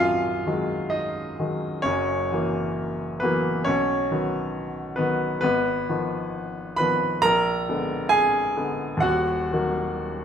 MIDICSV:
0, 0, Header, 1, 2, 480
1, 0, Start_track
1, 0, Tempo, 927357
1, 955, Time_signature, 4, 2, 24, 8
1, 1440, Tempo, 890208
1, 4320, Tempo, 933126
1, 5412, End_track
2, 0, Start_track
2, 0, Title_t, "Grand piano"
2, 0, Program_c, 0, 0
2, 0, Control_c, 0, 64, 127
2, 0, Note_on_c, 0, 35, 61
2, 0, Note_on_c, 0, 42, 47
2, 0, Note_on_c, 0, 51, 42
2, 0, Note_on_c, 0, 54, 38
2, 0, Note_on_c, 0, 56, 45
2, 0, Note_on_c, 0, 59, 63
2, 0, Note_on_c, 0, 65, 81
2, 0, Note_on_c, 0, 68, 67
2, 0, Note_on_c, 0, 71, 94
2, 0, Note_on_c, 0, 77, 97
2, 0, Note_on_c, 0, 80, 83
2, 232, Note_off_c, 0, 42, 0
2, 240, Note_off_c, 0, 51, 0
2, 240, Note_on_c, 0, 51, 39
2, 244, Note_off_c, 0, 54, 0
2, 244, Note_on_c, 0, 54, 42
2, 246, Note_off_c, 0, 56, 0
2, 246, Note_on_c, 0, 56, 50
2, 453, Note_off_c, 0, 65, 0
2, 465, Note_on_c, 0, 75, 80
2, 471, Note_off_c, 0, 77, 0
2, 471, Note_on_c, 0, 63, 60
2, 694, Note_off_c, 0, 51, 0
2, 696, Note_off_c, 0, 54, 0
2, 697, Note_off_c, 0, 56, 0
2, 722, Note_on_c, 0, 51, 37
2, 724, Note_on_c, 0, 56, 43
2, 725, Note_on_c, 0, 54, 35
2, 931, Note_off_c, 0, 63, 0
2, 938, Note_off_c, 0, 51, 0
2, 939, Note_off_c, 0, 54, 0
2, 939, Note_off_c, 0, 56, 0
2, 943, Note_on_c, 0, 73, 100
2, 948, Note_off_c, 0, 75, 0
2, 948, Note_on_c, 0, 61, 69
2, 956, Note_on_c, 0, 30, 54
2, 960, Note_on_c, 0, 42, 61
2, 965, Control_c, 0, 64, 0
2, 966, Note_off_c, 0, 71, 0
2, 967, Note_off_c, 0, 35, 0
2, 968, Note_off_c, 0, 80, 0
2, 970, Note_off_c, 0, 59, 0
2, 970, Note_off_c, 0, 68, 0
2, 1044, Control_c, 0, 64, 127
2, 1192, Note_off_c, 0, 30, 0
2, 1194, Note_off_c, 0, 42, 0
2, 1202, Note_on_c, 0, 52, 44
2, 1206, Note_on_c, 0, 54, 41
2, 1210, Note_on_c, 0, 58, 48
2, 1656, Note_off_c, 0, 61, 0
2, 1661, Note_off_c, 0, 52, 0
2, 1663, Note_off_c, 0, 54, 0
2, 1664, Note_on_c, 0, 71, 88
2, 1665, Note_off_c, 0, 58, 0
2, 1674, Note_on_c, 0, 59, 58
2, 1675, Note_off_c, 0, 73, 0
2, 1682, Note_on_c, 0, 54, 47
2, 1684, Note_on_c, 0, 52, 40
2, 1686, Note_on_c, 0, 58, 52
2, 1898, Note_off_c, 0, 54, 0
2, 1898, Note_off_c, 0, 59, 0
2, 1899, Note_off_c, 0, 52, 0
2, 1900, Note_off_c, 0, 58, 0
2, 1905, Note_on_c, 0, 73, 98
2, 1911, Note_off_c, 0, 71, 0
2, 1912, Note_on_c, 0, 61, 73
2, 1922, Note_on_c, 0, 35, 64
2, 1928, Control_c, 0, 64, 0
2, 2013, Control_c, 0, 64, 127
2, 2150, Note_off_c, 0, 35, 0
2, 2157, Note_on_c, 0, 51, 46
2, 2160, Note_on_c, 0, 59, 47
2, 2161, Note_on_c, 0, 54, 41
2, 2607, Note_off_c, 0, 61, 0
2, 2612, Note_off_c, 0, 51, 0
2, 2613, Note_off_c, 0, 54, 0
2, 2613, Note_off_c, 0, 59, 0
2, 2614, Note_on_c, 0, 71, 79
2, 2621, Note_on_c, 0, 59, 65
2, 2626, Note_off_c, 0, 73, 0
2, 2629, Note_on_c, 0, 51, 44
2, 2632, Note_on_c, 0, 54, 43
2, 2848, Note_off_c, 0, 51, 0
2, 2848, Note_off_c, 0, 71, 0
2, 2849, Note_off_c, 0, 59, 0
2, 2850, Note_off_c, 0, 54, 0
2, 2856, Note_on_c, 0, 71, 94
2, 2863, Note_on_c, 0, 59, 77
2, 2872, Note_on_c, 0, 32, 60
2, 2879, Control_c, 0, 64, 0
2, 2970, Control_c, 0, 64, 127
2, 3106, Note_off_c, 0, 32, 0
2, 3116, Note_off_c, 0, 59, 0
2, 3117, Note_on_c, 0, 51, 46
2, 3120, Note_on_c, 0, 53, 45
2, 3124, Note_on_c, 0, 59, 50
2, 3584, Note_off_c, 0, 51, 0
2, 3586, Note_off_c, 0, 53, 0
2, 3587, Note_off_c, 0, 59, 0
2, 3587, Note_on_c, 0, 83, 108
2, 3589, Note_off_c, 0, 71, 0
2, 3597, Note_on_c, 0, 71, 77
2, 3603, Note_on_c, 0, 51, 43
2, 3605, Note_on_c, 0, 53, 43
2, 3606, Note_on_c, 0, 59, 48
2, 3820, Note_off_c, 0, 51, 0
2, 3821, Note_off_c, 0, 53, 0
2, 3821, Note_off_c, 0, 71, 0
2, 3822, Note_off_c, 0, 59, 0
2, 3832, Note_on_c, 0, 82, 118
2, 3834, Note_off_c, 0, 83, 0
2, 3838, Note_on_c, 0, 70, 88
2, 3849, Control_c, 0, 64, 0
2, 3850, Note_on_c, 0, 34, 65
2, 3929, Control_c, 0, 64, 127
2, 4076, Note_off_c, 0, 34, 0
2, 4087, Note_on_c, 0, 50, 46
2, 4087, Note_on_c, 0, 59, 50
2, 4089, Note_on_c, 0, 56, 40
2, 4295, Note_off_c, 0, 70, 0
2, 4303, Note_on_c, 0, 80, 111
2, 4311, Note_on_c, 0, 68, 77
2, 4314, Note_off_c, 0, 82, 0
2, 4535, Note_off_c, 0, 50, 0
2, 4535, Note_off_c, 0, 59, 0
2, 4536, Note_off_c, 0, 56, 0
2, 4548, Note_on_c, 0, 50, 43
2, 4550, Note_on_c, 0, 59, 46
2, 4552, Note_on_c, 0, 56, 38
2, 4757, Note_on_c, 0, 39, 64
2, 4765, Note_off_c, 0, 68, 0
2, 4767, Note_off_c, 0, 50, 0
2, 4768, Note_off_c, 0, 59, 0
2, 4769, Note_off_c, 0, 56, 0
2, 4773, Note_on_c, 0, 78, 93
2, 4782, Note_off_c, 0, 80, 0
2, 4782, Note_on_c, 0, 66, 86
2, 4785, Note_on_c, 0, 27, 56
2, 4798, Control_c, 0, 64, 0
2, 4891, Control_c, 0, 64, 127
2, 5009, Note_off_c, 0, 39, 0
2, 5023, Note_off_c, 0, 27, 0
2, 5042, Note_on_c, 0, 51, 44
2, 5044, Note_on_c, 0, 54, 47
2, 5044, Note_on_c, 0, 58, 46
2, 5412, Note_off_c, 0, 51, 0
2, 5412, Note_off_c, 0, 54, 0
2, 5412, Note_off_c, 0, 58, 0
2, 5412, Note_off_c, 0, 66, 0
2, 5412, Note_off_c, 0, 78, 0
2, 5412, End_track
0, 0, End_of_file